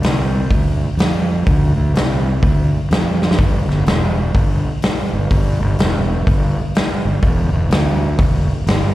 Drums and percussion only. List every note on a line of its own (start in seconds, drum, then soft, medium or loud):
0.03 snare loud
0.03 open hi-hat medium
0.51 kick loud
0.51 open hi-hat medium
0.99 snare loud
0.99 open hi-hat medium
1.47 kick loud
1.47 open hi-hat medium
1.95 snare loud
1.95 open hi-hat medium
2.43 kick loud
2.43 open hi-hat medium
2.91 snare loud
2.91 open hi-hat medium
3.22 snare medium
3.31 snare medium
3.39 kick loud
3.39 open hi-hat medium
3.70 snare soft
3.86 snare loud
3.86 open hi-hat medium
4.34 kick loud
4.34 open hi-hat medium
4.82 snare loud
4.82 open hi-hat medium
5.31 kick loud
5.31 open hi-hat medium
5.79 snare loud
5.79 open hi-hat medium
6.27 kick loud
6.27 open hi-hat medium
6.75 snare loud
6.75 open hi-hat medium
7.23 kick loud
7.23 open hi-hat medium
7.71 snare loud
7.71 open hi-hat medium
8.19 kick loud
8.19 open hi-hat medium
8.67 snare loud
8.67 open hi-hat medium